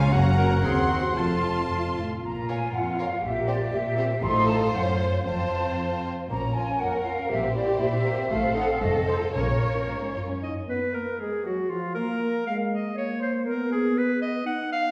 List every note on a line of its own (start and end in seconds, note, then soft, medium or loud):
0.00 0.13 C#2 medium
0.00 0.13 C#3 medium
0.00 0.12 G#3 medium
0.00 0.10 C#4 medium
0.00 0.11 F4 medium
0.00 0.13 F4 medium
0.00 0.11 F5 medium
0.00 0.11 G#5 medium
0.00 0.13 G#5 medium
0.12 0.63 F#1 medium
0.12 0.63 F#2 medium
0.12 0.59 A#3 soft
0.12 0.62 C#4 medium
0.12 0.59 F#4 soft
0.12 0.24 F#4 medium
0.12 1.19 F#5 medium
0.12 0.63 F#5 soft
0.12 0.63 A#5 medium
0.12 0.64 A#5 medium
0.38 0.63 A#4 medium
0.63 1.17 D#2 medium
0.63 1.17 D#2 soft
0.63 1.17 C4 soft
0.63 1.14 C4 soft
0.63 1.16 F#4 soft
0.63 0.90 G#4 medium
0.63 1.16 F#5 soft
0.63 1.15 C6 soft
0.63 1.97 C6 soft
0.90 1.02 F#4 medium
1.15 2.01 F1 soft
1.15 1.64 F2 soft
1.15 1.94 C4 soft
1.15 2.00 F4 soft
1.15 1.70 F4 medium
1.15 1.96 A4 soft
1.15 2.02 A5 soft
1.15 1.97 A5 soft
1.15 2.00 C6 soft
1.71 1.95 F2 soft
1.97 2.22 A2 soft
2.22 2.63 A#1 soft
2.22 2.65 A#2 soft
2.22 3.19 F4 soft
2.22 2.47 A#5 medium
2.48 2.57 F4 soft
2.48 2.57 A#4 soft
2.48 2.56 C#5 soft
2.48 2.73 G#5 medium
2.73 3.15 F2 soft
2.73 2.98 F#5 medium
2.97 3.07 F4 soft
2.97 3.07 A#4 soft
2.97 3.07 C#5 soft
2.97 3.23 F5 medium
3.23 3.62 A#1 soft
3.23 3.64 A#2 medium
3.23 4.22 G4 medium
3.23 3.47 E5 medium
3.47 3.55 C4 soft
3.47 3.55 G4 soft
3.47 3.56 C5 soft
3.47 3.72 D5 medium
3.73 4.14 A#2 soft
3.73 4.22 E5 medium
3.98 4.06 C4 soft
3.98 4.06 G4 soft
3.98 4.05 C5 soft
4.22 4.69 A1 medium
4.22 4.70 A2 medium
4.22 4.70 D#4 medium
4.22 5.21 F4 medium
4.22 4.72 A4 medium
4.22 5.21 C5 medium
4.22 4.48 C6 medium
4.47 4.53 A5 medium
4.72 5.24 F#2 soft
4.72 5.25 C#4 soft
4.72 5.24 C5 medium
4.72 4.80 F#5 medium
4.99 5.05 F5 soft
5.25 5.75 F1 soft
5.25 6.08 F2 soft
5.25 6.09 C4 soft
5.25 6.08 F4 soft
5.25 6.03 C5 soft
5.25 6.08 C5 soft
5.25 6.03 A5 medium
6.29 6.70 A#1 soft
6.29 6.70 A#2 medium
6.29 6.42 A#3 soft
6.29 6.41 C#4 soft
6.29 7.26 A#4 soft
6.29 6.53 A#5 medium
6.42 6.55 C#4 soft
6.54 6.69 F4 soft
6.54 6.80 G#5 medium
6.69 6.81 C#4 soft
6.79 7.20 F2 soft
6.79 6.94 A#3 soft
6.79 7.27 A#4 soft
6.79 7.05 F#5 medium
6.95 7.06 C#4 soft
7.04 7.18 F4 soft
7.04 7.30 F5 medium
7.18 7.31 C#4 soft
7.29 7.70 A#1 medium
7.29 7.70 A#2 medium
7.29 7.42 A#3 soft
7.29 7.42 C4 soft
7.29 8.31 G4 medium
7.29 8.81 C5 soft
7.29 7.54 E5 medium
7.43 7.56 C4 soft
7.54 7.67 E4 soft
7.54 7.80 D5 medium
7.66 7.80 G4 soft
7.78 8.20 A#2 medium
7.78 7.92 E4 soft
7.78 8.29 E5 medium
7.92 8.05 C4 soft
8.06 8.18 A#3 soft
8.18 8.30 C4 soft
8.29 8.71 A1 medium
8.29 8.71 A2 medium
8.29 8.42 A3 soft
8.29 9.33 A4 medium
8.29 8.54 F5 medium
8.43 8.56 C4 soft
8.55 8.68 D#4 medium
8.55 8.69 F#5 medium
8.68 8.81 C4 soft
8.68 8.82 F5 medium
8.81 9.23 F1 medium
8.81 9.24 F2 medium
8.81 8.93 A3 soft
8.81 9.34 A4 medium
8.81 9.08 D#5 medium
8.95 9.08 C4 soft
9.07 9.21 D#4 soft
9.07 9.13 C5 medium
9.20 9.34 F4 soft
9.34 9.77 A#1 medium
9.34 9.77 A#2 medium
9.34 9.47 A#3 soft
9.34 9.47 C#4 soft
9.34 9.87 A#4 soft
9.34 10.22 A#4 soft
9.34 10.15 C#5 medium
9.48 9.61 C#4 soft
9.60 9.74 F4 soft
9.74 9.88 C#4 soft
9.87 10.14 G#2 soft
9.87 10.01 A#3 soft
10.00 10.15 C#4 soft
10.14 10.42 F#2 soft
10.14 10.28 F4 soft
10.27 10.41 C#4 soft
10.42 10.54 D#4 medium
10.42 10.48 D#5 medium
10.42 10.55 D#5 medium
10.67 10.79 B3 medium
10.67 10.93 B4 medium
10.67 10.96 B4 medium
10.93 11.05 A#3 soft
10.93 11.19 A#4 soft
10.93 11.22 A#4 medium
11.19 11.30 G#3 soft
11.19 11.44 G#4 soft
11.19 11.44 G#4 medium
11.44 11.56 F#3 medium
11.44 11.70 F#4 soft
11.44 11.71 F#4 medium
11.68 11.95 F3 medium
11.68 11.95 F4 soft
11.68 11.94 F4 medium
11.95 12.46 A#3 medium
11.95 12.45 A#4 medium
11.95 12.46 A#4 medium
12.46 12.93 G#3 soft
12.46 12.58 F5 medium
12.46 12.53 F5 medium
12.71 12.96 D#5 soft
12.71 12.97 D#5 medium
12.95 13.44 A#3 medium
12.95 13.21 C#5 medium
12.95 13.22 C#5 medium
13.19 13.45 C5 medium
13.19 13.33 C5 medium
13.44 14.46 B3 medium
13.44 13.50 A#4 medium
13.44 13.71 A#4 medium
13.68 13.74 G#4 medium
13.68 13.99 G#4 medium
13.95 14.01 B4 medium
13.95 14.21 B4 medium
14.20 14.26 D#5 medium
14.20 14.46 D#5 medium
14.44 14.91 D#4 medium
14.44 14.52 F#5 medium
14.44 14.71 F#5 medium
14.70 14.91 F5 medium